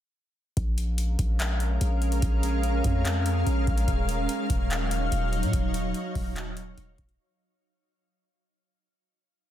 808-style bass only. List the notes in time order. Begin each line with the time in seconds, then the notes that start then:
0.57 A#1
1.19 A#1
1.81 A#1
2.22 A#1
2.84 F2
3.47 A#1
3.68 A#1
3.88 D#1
4.50 D#1
5.12 D#1
5.43 A#2
5.53 D#1
6.15 D#1
6.78 D#1
6.99 D#1